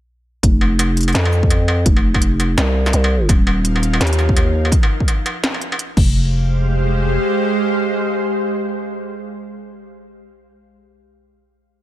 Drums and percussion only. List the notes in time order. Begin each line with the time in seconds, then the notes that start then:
0.43 kick, closed hi-hat
0.61 struck metal
0.79 closed hi-hat, struck metal
0.97 closed hi-hat
1.01 closed hi-hat
1.03 closed hi-hat
1.08 closed hi-hat, struck metal
1.13 snare, closed hi-hat
1.15 closed hi-hat
1.25 struck metal
1.33 shaker
1.43 kick
1.50 closed hi-hat, struck metal
1.68 struck metal
1.86 kick, closed hi-hat
1.97 struck metal
2.14 kick, struck metal
2.22 closed hi-hat
2.40 closed hi-hat, struck metal
2.58 snare, closed hi-hat, struck metal
2.86 snare, struck metal, shaker
2.93 closed hi-hat
3.04 struck metal
3.29 kick, closed hi-hat, struck metal
3.47 struck metal
3.65 closed hi-hat
3.76 struck metal
3.83 closed hi-hat
3.93 struck metal
4.01 snare, closed hi-hat
4.07 closed hi-hat
4.13 closed hi-hat
4.19 struck metal, shaker
4.29 kick
4.37 closed hi-hat, struck metal
4.65 struck metal
4.72 kick, closed hi-hat
4.83 struck metal
5.00 kick
5.08 closed hi-hat, struck metal
5.26 closed hi-hat, struck metal
5.44 snare, closed hi-hat
5.54 struck metal
5.62 closed hi-hat
5.72 struck metal
5.79 closed hi-hat
5.97 kick, crash